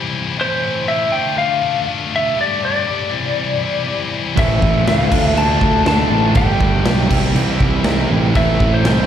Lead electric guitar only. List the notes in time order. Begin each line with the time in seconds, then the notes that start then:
0.41 C5
0.88 E5
1.12 G5
1.38 F5
2.16 E5
2.41 D5
2.65 D5
4.39 E5
4.88 F5
5.25 E5
5.38 A5
5.88 A5
6.37 G5
7.49 F5
8.37 E5
8.74 C5
8.87 C5